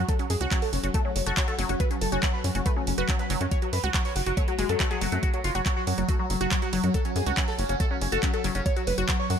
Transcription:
Already playing: F#3
0.09 A4, kick, closed hi-hat
0.19 F#3 C#4, closed hi-hat
0.30 F#2 G#4, open hi-hat
0.41 C#2 C#4 F#4, closed hi-hat
0.51 F#3 C#4, kick, clap, closed hi-hat
0.62 A4, open hi-hat
0.73 F#1 C#4, open hi-hat
0.84 F#1 C#4 F#4, closed hi-hat
0.94 A3 A4, kick, closed hi-hat
1.05 F#3 C#4
1.16 F#1 C#4, open hi-hat
1.26 F#1 F#4 A4, closed hi-hat
1.37 F#3 C#4, kick, clap, closed hi-hat
1.48 F#3 A4, closed hi-hat
1.59 F#1 F#3 C#4, open hi-hat
1.69 F#1 C#4 F#4, closed hi-hat
1.80 B4, kick, closed hi-hat
1.91 F#3 C#4, closed hi-hat
2.01 F#1 A4, open hi-hat
2.12 F#1 C#4 F#4, closed hi-hat
2.23 F#3 C#4, kick, clap, closed hi-hat
2.34 B4
2.44 F#2 C#4, open hi-hat
2.55 F#1 C#4 F#4, closed hi-hat
2.66 A3 B4, kick, closed hi-hat
2.76 F#3 C#4
2.87 F#1 C#4, open hi-hat
2.98 F#1 F#4 B4, closed hi-hat
3.09 F#3 C#4, kick, clap, closed hi-hat
3.19 F#3 B4, closed hi-hat
3.30 F#1 F#3 C#4, open hi-hat
3.41 F#2 C#4 F#4, closed hi-hat
3.51 C#5, kick, closed hi-hat
3.62 F#3 F#4, closed hi-hat
3.73 F#2 B4, open hi-hat
3.84 C#2 F#4, closed hi-hat
3.94 F#3 F#4, kick, clap, closed hi-hat
4.05 C#5, open hi-hat
4.16 F#1 F#4, open hi-hat
4.26 F#1 F#4, closed hi-hat
4.37 A3 C#5, kick, closed hi-hat
4.48 F#3 F#4, closed hi-hat
4.59 F#1 G#3 F#4, open hi-hat
4.69 F#2 F#3 A4, closed hi-hat
4.80 A3 F#4, kick, clap, closed hi-hat
4.91 F#3 G#4, closed hi-hat
5.01 F#1 F#3 F#4, open hi-hat
5.12 F#2 A3 F#4, closed hi-hat
5.23 F#4, kick, closed hi-hat
5.34 F#3, closed hi-hat
5.44 F#1 F4, open hi-hat
5.55 F#1 F#3 F#4, closed hi-hat
5.66 F#3, kick, clap, closed hi-hat
5.76 F#4
5.87 F#2 F#3, open hi-hat
5.98 F#1 F#3 F#4, closed hi-hat
6.09 A3 F#4, kick, closed hi-hat
6.19 F#3
6.30 F#1 F#3, open hi-hat
6.41 F#1 F#4, closed hi-hat
6.51 F#3, kick, clap, closed hi-hat
6.62 F#3 F#4, closed hi-hat
6.73 F#1 F#3, open hi-hat
6.84 F#2 F#3 F#4, closed hi-hat
6.94 A4, kick, closed hi-hat
7.05 F#3 C#4, closed hi-hat
7.16 F#2 G#4, open hi-hat
7.26 C#2 C#4 F#4, closed hi-hat
7.37 F#3 C#4, kick, clap, closed hi-hat
7.48 A4, open hi-hat
7.59 F#1 C#4, open hi-hat
7.69 F#1 C#4 F#4, closed hi-hat
7.80 A3 A4, kick, closed hi-hat
7.91 F#3 C#4
8.01 F#1 C#4, open hi-hat
8.12 F#1 F#4 A4, closed hi-hat
8.23 F#3 C#4, kick, clap, closed hi-hat
8.34 F#3 A4, closed hi-hat
8.44 F#1 F#3 C#4, open hi-hat
8.55 F#1 C#4 F#4, closed hi-hat
8.66 C#5, kick, closed hi-hat
8.76 F#3 F#4, closed hi-hat
8.87 F#1 B4, open hi-hat
8.98 F#1 F#4, closed hi-hat
9.09 F#3 F#4, kick, clap, closed hi-hat
9.19 C#5
9.30 F#2 F#4, open hi-hat

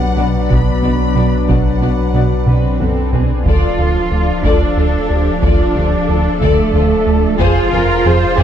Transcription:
Already playing: B1 F#3 D4 B4 D5 F#5
0.16 B1 B2 B3 D4 F#4 D5
0.49 B1 B2 B3 D4 F#4 D5 B5, taiko
0.82 B1 B2 B3 D4 F#4 D5
1.15 B1 B2 B3 D4 F#4 D5
1.48 B1 B2 F#3 B3 D4 F#4 D5 F#5, taiko
1.81 B1 B2 B3 D4 F#4 D5
2.14 B1 B2 B3 D4 F#4 D5
2.46 B1 B2 C4 D4 B4, taiko mid
2.80 B1 B2 B3 D4 A4 B4, taiko low-mid
3.13 B1 B2 D4 G#4 B4, taiko low
3.45 D1 D2 F3 D4 F4 A4 D5 F5, taiko
3.78 D2 F4 A4
4.11 D2 F3 A4
4.44 D2 D4 F4 A4 D5, taiko
4.76 D2 F4 A4
5.10 D2 F3 G4 A4
5.42 D2 D4 F4 A4 D5, taiko
5.76 D2 F4 G4 A4
6.08 D2 F3 A4
6.41 D2 A3 A4 D5, taiko
6.74 D2 F4 A4
7.06 D2 F3 A4
7.39 F1 F2 F3 F4 G#4 C5 F5, taiko
7.72 F2 F4 G#4 A#4
8.04 F2 F3 G#4 C5
8.38 F2 D4 G#4 C5, taiko

